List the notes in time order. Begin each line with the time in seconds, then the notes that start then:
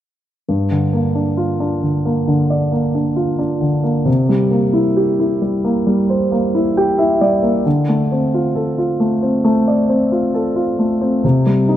0.49 G2
0.71 D3
0.93 A#3
1.15 D4
1.37 F4
1.60 D4
1.83 D3
2.05 A#3
2.27 D3
2.50 D5
2.72 A#3
2.95 D4
3.16 F4
3.39 D4
3.61 D3
3.84 A#3
4.05 C3
4.29 G3
4.51 A#3
4.73 E4
4.97 G4
5.20 E4
5.42 G3
5.64 A#3
5.87 G3
6.10 C5
6.32 A#3
6.55 E4
6.77 G4 G5
6.98 E4 E5
7.21 G3 D5
7.43 A#3
7.66 D3
7.89 A3
8.12 C4
8.34 F4
8.55 A4
8.78 F4
9.00 A3
9.22 C4
9.45 A3
9.68 D5
9.89 C4
10.12 F4
10.34 A4
10.56 F4
10.79 A3
11.01 C4
11.24 C3
11.46 G3
11.69 D#4